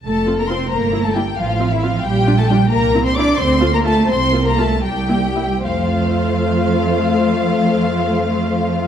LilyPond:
<<
  \new Staff \with { instrumentName = "Violin section" } { \time 6/8 \key f \major \tempo 4. = 83 a''8. bes''16 c'''8 bes''8. a''16 g''8 | f''8. e''16 f''8 g''8. a''16 g''8 | bes''8. c'''16 d'''8 c'''8. bes''16 a''8 | c'''8. bes''16 a''8 g''4. |
f''2.~ | f''2. | }
  \new Staff \with { instrumentName = "Violin section" } { \time 6/8 \key f \major a'8. bes'16 c''8 bes'8. a'16 g'8 | f'8. e'16 f'8 g'8. a'16 g'8 | bes'8. c''16 d''8 c''8. bes'16 a'8 | c''8. bes'16 a'8 g'4. |
c''2.~ | c''2. | }
  \new Staff \with { instrumentName = "Viola section" } { \time 6/8 \key f \major r8 <c' f'>8 <c' f'>8 r8 <bes e'>8 <bes e'>8 | r8 <c' f'>8 <c' f'>8 r8 <d' f'>8 <d' f'>8 | r8 <c' e'>8 <c' e'>8 r8 <a f'>8 <a f'>8 | r8 <bes f'>8 <bes f'>8 r8 <bes e'>8 <bes e'>8 |
<a f'>2.~ | <a f'>2. | }
  \new Staff \with { instrumentName = "Cello section" } { \time 6/8 \key f \major a8. bes16 c'8 bes8. a16 g8 | f8. e16 f8 g8. a16 g8 | bes8. c'16 d'8 c'8. bes16 a8 | c'8. bes16 a8 g4. |
f2.~ | f2. | }
  \new Staff \with { instrumentName = "Double bass section" } { \clef bass \time 6/8 \key f \major f,,4. g,,4. | a,,4. bes,,4. | c,4. d,4. | c,4. c,4. |
f,2.~ | f,2. | }
>>